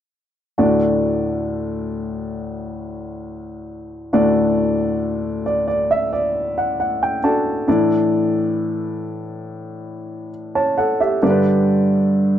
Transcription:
0.58 4.10 D2 soft
0.58 4.10 A2 soft
0.58 4.10 D4 soft
0.58 4.09 F#4 soft
0.58 4.10 A4 soft
0.58 4.10 D5 soft
4.13 7.63 D2 soft
4.13 7.63 A2 soft
4.13 7.19 D4 soft
4.13 7.19 F#4 soft
4.13 7.19 A4 soft
4.13 5.45 D5 soft
5.46 5.66 D5 soft
5.68 5.88 D5 soft
5.91 6.11 E5 soft
6.13 6.54 D5 soft
6.58 6.78 F#5 soft
6.80 7.00 F#5 soft
7.03 7.22 G5 soft
7.23 7.66 D4 soft
7.23 7.68 F#4 soft
7.23 7.67 A4 soft
7.23 7.67 D5 soft
7.23 7.65 A5 soft
7.68 11.18 A2 soft
7.68 11.18 E3 soft
7.68 11.18 D4 soft
7.68 11.18 E4 soft
7.68 10.30 A4 soft
7.68 10.30 D5 soft
10.55 10.76 C#5 soft
10.55 10.76 A5 soft
10.78 10.99 A4 soft
10.78 10.98 F#5 soft
11.00 11.21 G4 soft
11.00 11.42 E5 soft
11.22 12.39 G2 soft
11.22 12.39 D3 soft
11.22 12.39 D4 soft
11.22 12.39 G4 soft
11.22 11.29 A#4 soft
11.22 12.39 D5 medium
11.30 12.39 B4 soft

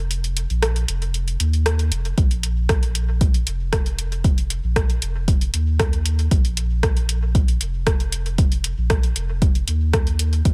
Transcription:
0.00 0.46 F1 medium
0.11 closed hi-hat medium
0.24 closed hi-hat soft
0.37 closed hi-hat medium
0.50 0.85 A#1 loud
0.50 closed hi-hat soft
0.62 cross-stick medium
0.62 closed hi-hat medium
0.76 closed hi-hat soft
0.88 1.36 F1 loud
0.88 closed hi-hat medium
1.02 closed hi-hat soft
1.14 closed hi-hat medium
1.28 closed hi-hat soft
1.40 1.91 D#2 medium
1.40 closed hi-hat medium
1.53 closed hi-hat soft
1.66 cross-stick medium
1.66 closed hi-hat medium
1.79 closed hi-hat soft
1.92 2.13 F1 medium
1.92 closed hi-hat medium
2.05 closed hi-hat soft
2.18 3.43 A#1 loud
2.18 kick loud
2.18 closed hi-hat medium
2.31 closed hi-hat soft
2.43 closed hi-hat medium
2.69 kick loud
2.69 cross-stick medium
2.69 closed hi-hat medium
2.83 closed hi-hat soft
2.95 closed hi-hat medium
3.21 kick loud
3.21 closed hi-hat medium
3.34 closed hi-hat soft
3.47 4.60 F1 medium
3.47 closed hi-hat medium
3.73 kick loud
3.73 cross-stick medium
3.73 closed hi-hat medium
3.86 closed hi-hat soft
3.99 closed hi-hat medium
4.12 closed hi-hat soft
4.24 kick loud
4.24 closed hi-hat medium
4.38 closed hi-hat soft
4.50 closed hi-hat medium
4.64 4.98 A#1 loud
4.76 kick loud
4.76 cross-stick medium
4.76 closed hi-hat medium
4.90 closed hi-hat soft
5.02 5.50 F1 loud
5.02 closed hi-hat medium
5.28 kick loud
5.28 closed hi-hat medium
5.41 closed hi-hat soft
5.54 6.28 D#2 medium
5.54 closed hi-hat medium
5.80 kick loud
5.80 cross-stick medium
5.80 closed hi-hat medium
5.93 closed hi-hat soft
6.06 closed hi-hat medium
6.19 closed hi-hat soft
6.31 7.57 A#1 loud
6.31 kick loud
6.31 closed hi-hat medium
6.45 closed hi-hat soft
6.57 closed hi-hat medium
6.83 kick loud
6.83 cross-stick medium
6.83 closed hi-hat medium
6.97 closed hi-hat soft
7.09 closed hi-hat medium
7.35 kick loud
7.35 closed hi-hat medium
7.48 closed hi-hat soft
7.61 8.74 F1 medium
7.61 closed hi-hat medium
7.87 kick loud
7.87 cross-stick medium
7.87 closed hi-hat medium
8.00 closed hi-hat soft
8.12 closed hi-hat medium
8.26 closed hi-hat soft
8.38 kick loud
8.38 closed hi-hat medium
8.52 closed hi-hat soft
8.64 closed hi-hat medium
8.78 9.12 A#1 loud
8.90 kick loud
8.90 cross-stick medium
8.90 closed hi-hat medium
9.03 closed hi-hat soft
9.16 9.64 F1 loud
9.16 closed hi-hat medium
9.42 kick loud
9.42 closed hi-hat medium
9.55 closed hi-hat soft
9.68 10.42 D#2 medium
9.68 closed hi-hat medium
9.93 kick loud
9.93 cross-stick medium
9.93 closed hi-hat medium
10.07 closed hi-hat soft
10.19 closed hi-hat medium
10.33 closed hi-hat soft
10.45 10.54 A#1 loud
10.45 kick loud
10.45 closed hi-hat medium

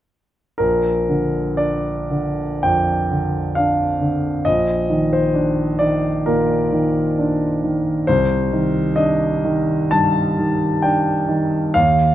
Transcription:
0.58 2.59 A#1 soft
0.58 1.58 A#4 soft
1.09 1.89 D3 soft
1.57 2.43 D4 soft
1.57 2.63 D5 soft
2.10 2.93 D3 soft
2.63 3.39 F2 soft
2.63 3.57 G5 medium
3.11 3.84 D3 soft
3.55 4.29 D4 soft
3.55 4.46 F5 soft
4.01 4.46 D3 soft
4.45 6.24 A#1 soft
4.45 5.13 D#5 medium
4.90 5.63 D#3 soft
5.13 5.82 C5 soft
5.34 6.09 D4 soft
5.79 6.55 D#3 soft
5.79 6.27 D5 soft
6.26 7.01 A#2 soft
6.26 7.63 A#4 soft
6.73 7.45 D#3 soft
7.19 7.90 D4 soft
7.64 8.08 D#3 soft
8.07 9.89 C2 soft
8.07 8.97 C5 medium
8.53 9.25 D#3 soft
8.96 9.74 D4 soft
8.96 9.92 D#5 medium
9.44 10.20 D#3 soft
9.91 10.65 G2 soft
9.91 10.83 A5 medium
10.39 11.11 D#3 soft
10.82 11.57 D4 soft
10.82 11.75 G5 medium
11.29 11.75 D#3 soft
11.74 12.15 D#2 soft
11.74 12.15 F5 medium

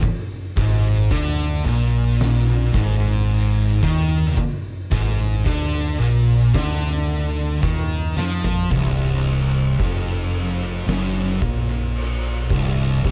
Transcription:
0.03 kick loud
0.03 open hi-hat medium
0.57 1.07 G#1 loud
0.57 1.10 G#2 loud
0.57 kick loud
1.11 1.62 D2 medium
1.11 1.64 D3 loud
1.11 kick loud
1.11 open hi-hat medium
1.65 2.70 A#1 medium
1.65 2.73 A#2 loud
2.20 snare loud
2.20 open hi-hat medium
2.74 3.79 G#1 loud
2.74 3.81 G#2 loud
2.74 kick loud
3.29 open hi-hat medium
3.83 4.33 D#2 loud
3.83 4.36 D#3 loud
3.83 kick loud
3.83 snare soft
4.37 kick loud
4.37 open hi-hat medium
4.91 5.42 G#1 loud
4.91 5.44 G#2 loud
4.91 kick loud
5.46 5.96 D2 medium
5.46 5.98 D3 loud
5.46 kick loud
5.46 open hi-hat medium
5.99 6.50 A#1 medium
5.99 6.53 A#2 loud
6.54 7.59 D2 medium
6.54 7.61 D3 loud
6.54 kick loud
6.54 snare loud
6.54 open hi-hat medium
7.63 8.13 D#2 medium
7.63 8.15 D#3 loud
7.63 kick loud
7.63 open hi-hat medium
8.16 8.67 F2 loud
8.16 8.70 F3 loud
8.16 snare medium
8.44 floor tom medium
8.71 9.76 C1 medium
8.71 9.78 C2 medium
8.71 kick loud
8.71 crash medium
9.25 crash medium
9.79 10.84 F1 medium
9.79 10.87 F2 loud
9.79 kick loud
9.79 crash medium
10.34 crash medium
10.87 11.38 F#1 medium
10.87 11.41 F#2 loud
10.87 snare loud
10.87 crash medium
11.42 12.47 A#1 medium
11.42 12.49 A#2 loud
11.42 kick medium
11.42 crash medium
11.70 snare soft
11.96 crash medium
12.50 13.01 C1 loud
12.50 13.04 C2 loud
12.50 kick loud
12.50 crash medium
13.04 13.11 C1 medium
13.04 13.11 C2 loud
13.04 kick loud
13.04 crash medium

